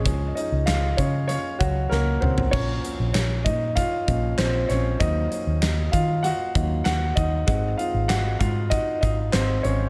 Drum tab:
CC |----------------|x---------------|----------------|----------------|
HH |x-x-x-x-x-x-----|--x-x-x-x-x-x-x-|x-x-x-x-x-x-x-x-|x-x-x-x-x-x-x-x-|
CP |----x-----------|----x-------x---|----x-------x---|----x-------x---|
SD |----o-------o---|----o-------o-o-|----o-------o---|----o-------o---|
T2 |--------------o-|----------------|----------------|----------------|
FT |---------------o|----------------|----------------|----------------|
BD |o-----o---o-----|o-----o-o-o-----|o-----o---o---o-|o-----o-o-o-----|